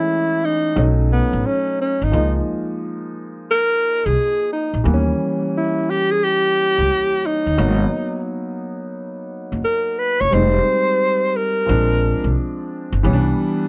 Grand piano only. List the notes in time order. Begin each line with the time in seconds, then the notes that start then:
Already playing: E3 G#3 A3 C#4
0.76 F#3 A3 C#4 D#4
2.12 F3 G#3 A#3 D#4
4.84 E3 G3 A#3 B3
4.94 C#4
7.58 F#3 A#3 B3 D#4
10.31 G3 G#3 C4 D#4
11.66 F3 G#3 C4 D4
13.03 E3 G3 B3 C#4
13.13 D4